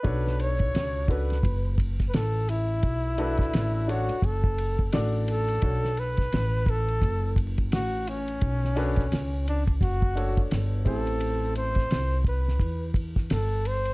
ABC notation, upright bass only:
X:1
M:4/4
L:1/16
Q:"Swing 16ths" 1/4=86
K:Ador
V:1 name="Upright bass" clef=bass
B,,,4 ^C,,4 F,,,4 A,,,4 | B,,,4 A,,,3 z F,,,4 A,,,4 | B,,,4 A,,,4 F,,,4 A,,,4 | B,,,4 ^C,,4 F,,,4 G,,,2 A,,,2- |
A,,,4 C,,4 E,,4 G,,,4 |]